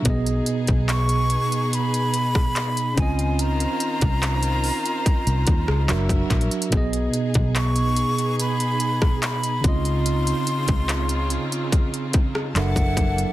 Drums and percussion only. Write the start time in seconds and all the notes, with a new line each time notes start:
0.05 kick, closed hi-hat
0.26 closed hi-hat
0.46 closed hi-hat
0.67 kick, closed hi-hat
0.89 clap, closed hi-hat
1.09 closed hi-hat
1.30 closed hi-hat
1.52 closed hi-hat
1.73 closed hi-hat
1.94 closed hi-hat
2.14 closed hi-hat
2.35 kick, cross-stick
2.56 clap, closed hi-hat
2.77 closed hi-hat
2.97 kick, closed hi-hat, open hi-hat
3.19 closed hi-hat
3.39 closed hi-hat
3.60 closed hi-hat
3.80 closed hi-hat
4.01 kick, closed hi-hat
4.23 clap, closed hi-hat
4.43 closed hi-hat
4.64 open hi-hat
4.86 closed hi-hat
5.06 kick, closed hi-hat
5.27 closed hi-hat
5.47 kick, closed hi-hat
5.68 cross-stick
5.89 clap, closed hi-hat
6.09 kick, closed hi-hat
6.30 kick, clap, closed hi-hat, open hi-hat
6.41 closed hi-hat
6.51 closed hi-hat
6.62 closed hi-hat
6.72 kick, closed hi-hat
6.93 closed hi-hat
7.13 closed hi-hat
7.34 kick, closed hi-hat
7.56 clap, closed hi-hat
7.76 closed hi-hat
7.96 closed hi-hat
8.18 closed hi-hat
8.40 closed hi-hat
8.60 closed hi-hat
8.80 closed hi-hat
9.02 kick, cross-stick
9.23 clap, closed hi-hat
9.44 closed hi-hat
9.64 kick, closed hi-hat, open hi-hat
9.85 closed hi-hat
10.06 closed hi-hat
10.27 closed hi-hat
10.47 closed hi-hat
10.68 kick, closed hi-hat
10.89 clap, closed hi-hat
11.09 closed hi-hat
11.30 closed hi-hat
11.52 closed hi-hat
11.72 kick, closed hi-hat
11.94 closed hi-hat
12.13 kick, closed hi-hat
12.35 cross-stick
12.56 clap, closed hi-hat
12.76 kick, closed hi-hat
12.97 kick, closed hi-hat, open hi-hat
13.18 closed hi-hat